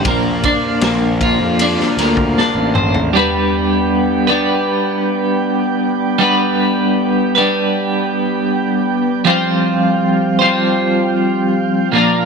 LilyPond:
<<
  \new Staff \with { instrumentName = "Transistor combo organ" } { \time 4/4 \key g \mixolydian \tempo 4 = 78 << { <bes' f''>1 | <g' g''>1~ | <g' g''>1~ | <g' g''>2.~ <g' g''>8 <bes' bes''>8 | } \\ { <c'' d''>1 | <b' d''>1~ | <b' d''>1 | <c'' f''>2.~ <c'' f''>8 <d'' f''>8 | } >> }
  \new Staff \with { instrumentName = "Clean electric guitar" } { \time 4/4 \key g \mixolydian bes8 d'8 bes8 f'8 d'8 bes8 d'8 c''8 | <g b d' b'>4. <g b d' b'>2~ <g b d' b'>8 | <g b d' b'>4. <g b d' b'>2~ <g b d' b'>8 | <f g c' f' c''>4. <f g c' f' c''>2 <bes, f bes d' f' bes'>8 | }
  \new Staff \with { instrumentName = "Picked electric bass" } { \clef bass \time 4/4 \key g \mixolydian bes,,8 r8 bes,,8. f,8 r16 d,8 r16 a,,8. | r1 | r1 | r1 | }
  \new DrumStaff \with { instrumentName = "Drums" } \drummode { \time 4/4 <bd cymr>8 <bd cymr>8 <cymr sn>8 <bd cymr>8 cymr16 sn16 <cymr sn>16 bd16 sn8 toml16 tomfh16 | r4 r4 r4 r4 | r4 r4 r4 r4 | r4 r4 r4 r4 | }
>>